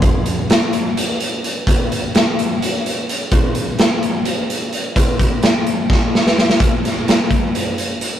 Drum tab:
HH |x-x-x-x-x-x-x-|x-x-x-x-x-x-x-|x-x-x-x-x-x-x-|x-x-x-x-------|
SD |----o---------|----o---------|----o---------|----o---o-oooo|
BD |o-------------|o-------------|o-------------|o-o-----o-----|

HH |x-x-x-x-x-x-x-|
SD |--o-o---------|
BD |o-----o-------|